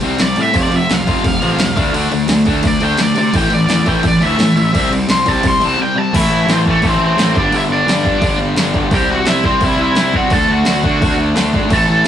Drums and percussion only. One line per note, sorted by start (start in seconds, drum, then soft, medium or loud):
0.01 crash medium
0.18 snare loud
0.18 crash medium
0.36 crash medium
0.54 kick loud
0.54 crash medium
0.72 crash medium
0.90 snare loud
0.90 crash medium
1.07 kick medium
1.07 crash medium
1.24 kick loud
1.24 crash medium
1.42 crash medium
1.59 snare loud
1.59 crash medium
1.77 kick loud
1.77 crash medium
1.94 crash medium
2.12 crash medium
2.28 snare loud
2.28 crash medium
2.45 kick medium
2.45 crash medium
2.63 kick loud
2.63 crash medium
2.80 crash medium
2.97 snare loud
2.97 crash medium
3.16 crash medium
3.34 kick loud
3.34 crash medium
3.50 crash medium
3.69 snare loud
3.69 crash medium
3.86 kick medium
3.86 crash medium
4.03 kick loud
4.03 crash medium
4.22 crash medium
4.39 snare loud
4.39 crash medium
4.57 crash medium
4.74 kick loud
4.74 crash medium
4.93 crash medium
5.09 snare loud
5.09 crash medium
5.26 kick medium
5.26 crash medium
5.43 kick loud
5.43 crash medium
5.62 crash medium
6.14 kick loud
6.14 crash loud
6.14 crash medium
6.49 snare loud
6.49 crash medium
6.66 kick medium
6.82 kick loud
6.82 crash medium
7.18 snare loud
7.18 crash medium
7.35 kick loud
7.52 crash medium
7.88 snare loud
7.88 crash medium
8.05 kick medium
8.22 kick loud
8.22 crash medium
8.56 snare loud
8.56 crash medium
8.74 kick medium
8.91 kick loud
8.91 crash medium
9.26 snare loud
9.26 crash medium
9.44 kick medium
9.61 kick loud
9.61 crash medium
9.95 snare loud
9.95 crash medium
10.14 kick medium
10.30 kick loud
10.30 crash medium
10.65 snare loud
10.65 crash medium
10.84 kick medium
11.02 kick loud
11.02 crash medium
11.36 snare loud
11.36 crash medium
11.54 kick medium
11.70 kick loud
11.70 crash medium
12.05 crash medium